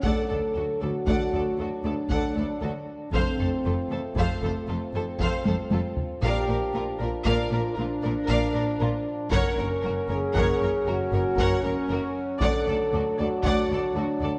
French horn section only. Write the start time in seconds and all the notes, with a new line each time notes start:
0.04 A4
0.82 F#4
1.60 D4
3.13 C4
3.92 A3
6.22 G4
7.01 F4
7.76 D4
9.31 A#4
10.10 G#4
10.88 F#4
11.63 C#4
12.41 A4
13.19 F#4
13.96 D4